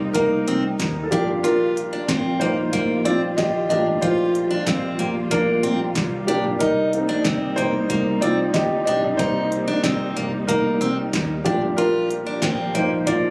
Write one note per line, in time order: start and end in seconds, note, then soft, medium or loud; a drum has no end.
0.00 1.08 D#3 medium
0.00 1.08 G3 medium
0.00 1.08 A#3 medium
0.00 1.08 A#3 soft
0.00 1.08 C4 medium
0.00 0.12 D#4 medium
0.00 1.08 D#4 medium
0.00 1.11 G4 medium
0.00 0.19 C5 medium
0.00 1.08 D5 medium
0.00 1.14 D#5 loud
0.13 0.41 C2 loud
0.13 0.46 A#3 medium
0.13 1.01 D#4 medium
0.13 1.07 A#4 medium
0.13 kick loud
0.13 closed hi-hat loud
0.48 0.74 C2 medium
0.48 0.63 C4 medium
0.48 closed hi-hat medium
0.80 1.06 D#2 medium
0.80 kick loud
0.80 snare loud
0.80 clap medium
0.80 closed hi-hat medium
1.04 1.10 A4 medium
1.11 1.91 A#1 medium
1.11 13.30 G3 medium
1.11 1.43 A#3 medium
1.11 1.27 D4 medium
1.11 6.57 F4 medium
1.11 3.05 F4 medium
1.11 1.45 G4 medium
1.11 3.66 A4 medium
1.11 kick loud
1.11 closed hi-hat medium
1.28 floor tom medium
1.43 2.38 D4 medium
1.43 1.75 F4 medium
1.43 2.43 A#4 medium
1.43 closed hi-hat medium
1.77 closed hi-hat medium
1.93 2.08 D4 medium
2.08 2.35 A#1 loud
2.08 2.39 C4 medium
2.08 kick loud
2.08 snare loud
2.08 clap medium
2.08 closed hi-hat medium
2.40 2.67 A#1 medium
2.40 2.56 A#3 medium
2.40 3.02 D#4 medium
2.40 3.07 C5 medium
2.40 closed hi-hat medium
2.40 floor tom medium
2.73 3.00 A#1 loud
2.73 3.04 A#3 medium
2.73 kick loud
2.73 closed hi-hat loud
3.05 3.32 A#1 medium
3.05 3.21 C4 medium
3.05 3.36 F4 medium
3.05 3.38 D5 medium
3.05 closed hi-hat medium
3.37 3.64 A#1 medium
3.37 3.68 G4 medium
3.37 3.68 D#5 loud
3.37 kick loud
3.37 snare loud
3.37 clap medium
3.37 closed hi-hat medium
3.69 3.97 A1 medium
3.69 4.13 A3 medium
3.69 4.13 A#3 medium
3.69 3.85 D4 medium
3.69 4.02 F4 medium
3.69 4.01 G4 medium
3.69 4.03 D#5 loud
3.69 closed hi-hat medium
3.86 floor tom medium
4.01 4.55 A#1 medium
4.01 4.33 F4 medium
4.01 5.28 F4 medium
4.01 5.35 C5 medium
4.01 kick loud
4.01 closed hi-hat loud
4.35 closed hi-hat medium
4.51 4.66 D4 medium
4.67 4.93 A#1 loud
4.67 4.97 C4 medium
4.67 kick loud
4.67 snare loud
4.67 clap medium
4.67 closed hi-hat medium
4.99 5.26 A#1 loud
4.99 5.14 A#3 medium
4.99 closed hi-hat medium
4.99 floor tom medium
5.31 5.58 A#1 medium
5.31 5.62 A#3 medium
5.31 6.25 D4 medium
5.31 6.31 A#4 medium
5.31 kick loud
5.31 closed hi-hat loud
5.63 5.90 A#1 medium
5.63 5.79 C4 medium
5.63 closed hi-hat medium
5.95 6.23 C2 medium
5.95 kick loud
5.95 snare medium
5.95 clap medium
5.95 closed hi-hat medium
6.27 6.55 B1 medium
6.27 6.59 A#3 medium
6.27 6.44 D4 medium
6.27 6.61 G4 medium
6.27 closed hi-hat medium
6.44 floor tom medium
6.59 7.14 C2 medium
6.59 11.41 A#3 medium
6.59 11.41 C4 medium
6.59 11.41 D#4 medium
6.59 6.91 D#4 medium
6.59 6.92 D#4 medium
6.59 7.60 A#4 medium
6.59 kick loud
6.59 closed hi-hat medium
6.92 9.17 A#3 medium
6.92 9.48 C4 soft
6.92 7.57 D#4 medium
6.92 closed hi-hat medium
7.09 7.24 D4 medium
7.25 7.52 C2 medium
7.25 7.56 C4 medium
7.25 kick loud
7.25 snare loud
7.25 clap medium
7.25 closed hi-hat medium
7.56 7.84 C2 medium
7.56 7.73 A#3 medium
7.56 8.19 D#4 medium
7.56 8.23 C5 loud
7.56 closed hi-hat medium
7.56 floor tom medium
7.90 8.16 C2 loud
7.90 8.21 A#3 medium
7.90 kick loud
7.90 closed hi-hat loud
8.21 8.49 C2 medium
8.21 8.37 C4 medium
8.21 8.53 F4 medium
8.21 8.55 D5 medium
8.21 closed hi-hat medium
8.53 8.81 D2 medium
8.53 8.85 G4 medium
8.53 8.84 D#5 medium
8.53 kick loud
8.53 snare loud
8.53 clap medium
8.53 closed hi-hat medium
8.85 9.14 B1 medium
8.85 9.02 D4 medium
8.85 9.17 G4 medium
8.85 9.19 D#5 medium
8.85 closed hi-hat medium
9.03 floor tom medium
9.17 9.72 C2 loud
9.17 11.41 A#3 medium
9.17 10.45 D#4 medium
9.17 9.50 D#4 medium
9.17 10.51 C5 medium
9.17 11.41 D5 soft
9.17 kick loud
9.17 closed hi-hat medium
9.52 closed hi-hat medium
9.68 9.83 D4 medium
9.84 10.10 C2 loud
9.84 10.15 C4 medium
9.84 kick loud
9.84 snare loud
9.84 clap medium
9.84 closed hi-hat medium
10.16 10.43 C2 loud
10.16 10.32 A#3 medium
10.16 closed hi-hat medium
10.16 floor tom medium
10.47 10.75 C2 loud
10.47 10.79 A#3 medium
10.47 11.42 D#4 medium
10.47 11.48 A#4 medium
10.47 kick loud
10.47 closed hi-hat loud
10.81 11.07 C2 medium
10.81 10.96 C4 medium
10.81 closed hi-hat medium
11.13 11.40 D#2 medium
11.13 kick loud
11.13 snare loud
11.13 clap medium
11.13 closed hi-hat medium
11.44 12.25 A#1 loud
11.44 13.30 A#2 medium
11.44 13.30 F3 medium
11.44 11.88 A3 medium
11.44 11.76 A#3 medium
11.44 11.61 D4 medium
11.44 11.89 F4 medium
11.44 11.78 G4 medium
11.44 kick loud
11.44 closed hi-hat medium
11.62 floor tom medium
11.76 12.71 D4 medium
11.76 12.09 F4 medium
11.76 12.77 A#4 medium
11.76 closed hi-hat medium
12.11 closed hi-hat medium
12.26 12.42 D4 medium
12.42 12.69 A#1 loud
12.42 12.73 C4 medium
12.42 kick loud
12.42 snare loud
12.42 clap medium
12.42 closed hi-hat medium
12.74 13.02 A#1 medium
12.74 12.90 A#3 medium
12.74 12.83 D#4 medium
12.74 12.82 C5 medium
12.74 closed hi-hat medium
12.74 floor tom medium
13.07 13.30 A#1 loud
13.07 13.30 A#3 medium
13.07 13.30 F4 medium
13.07 13.30 D5 medium
13.07 kick loud
13.07 closed hi-hat loud